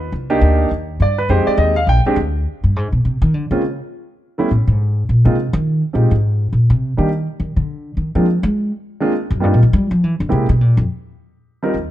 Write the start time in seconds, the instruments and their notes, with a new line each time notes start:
Already playing: upright bass D#2, grand piano B4
0.12 upright bass C2
0.30 grand piano A#3 D4 D#4 G4
0.41 upright bass D2
0.71 upright bass D#2
1.00 upright bass G2, grand piano D5
1.18 grand piano B4
1.29 upright bass F2, grand piano G#3 C4 D#4 G4 C5
1.47 grand piano D5, muted upright bass stroke
1.57 upright bass D#2, grand piano D#5
1.76 grand piano F5
1.87 upright bass A#1, grand piano G5
2.06 grand piano G#3 C4 D4 G4, muted upright bass stroke
2.16 upright bass D2
2.64 upright bass G2
2.76 upright bass G#2
2.92 upright bass B2
3.05 upright bass C3
3.22 upright bass D#3
3.34 upright bass D3
3.51 upright bass C#3, grand piano G#3 A#3 C4 C#4 F4
4.38 grand piano G3 A3 B3 C#4 E4
4.51 upright bass A2
4.67 upright bass G#2
5.09 upright bass A#2
5.25 upright bass C3, grand piano G#3 A#3 C4 D#4 F4
5.53 upright bass D#3
5.93 upright bass A#2, grand piano G#3 C4 D#4 F4 G4
6.11 upright bass G#2
6.53 upright bass A#2
6.70 upright bass C3
6.97 upright bass D#3, grand piano G3 A#3 D4 D#4 G4
7.40 upright bass D#3
7.56 upright bass D3
7.97 upright bass D#3
8.15 upright bass F3, grand piano G#3 A#3 C4 D4 F4
8.43 upright bass G#3
9.00 grand piano G#3 A#3 C4 D4 F4
9.30 upright bass F#2
9.40 upright bass G2, grand piano G3 A#3 C4 D#4 F4
9.54 upright bass A#2
9.63 upright bass D#3
9.73 upright bass G3
9.91 upright bass F3
10.04 upright bass E3
10.20 upright bass D3
10.29 upright bass C3, grand piano G#3 A#3 C4 E4 G4
10.49 upright bass B2
10.61 upright bass A#2
10.77 upright bass F2
11.63 grand piano G3 C4 D#4 F4 A#4
11.74 upright bass D#2